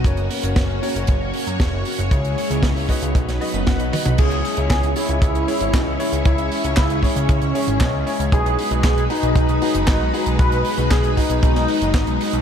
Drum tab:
CC |----------------|----------------|x---------------|----------------|
HH |xxoxx-oxx-oxx-ox|xxoxxooxxxoxxxox|xxoxxxoxxxoxx-ox|xxoxxxoxxxoxx-ox|
CP |----------------|----------------|----x-------x---|----x-------x---|
SD |----o-------o---|----o----o--o---|----o-------o---|----o-------o---|
T1 |----------------|--------------o-|----------------|----------------|
T2 |----------------|---------------o|----------------|----------------|
BD |o---o---o---o---|o---o-o-o---o---|o---o---o---o---|o---o-o-o---o---|

CC |----------------|----------------|
HH |xxoxxxoxxxoxx-ox|xxoxxxoxxxoxxxox|
CP |----x-------x---|----x-------x---|
SD |----o-------o---|----o----o--o---|
T1 |----------------|----------------|
T2 |----------------|----------------|
BD |o---o---o---o---|o---o-o-o---o---|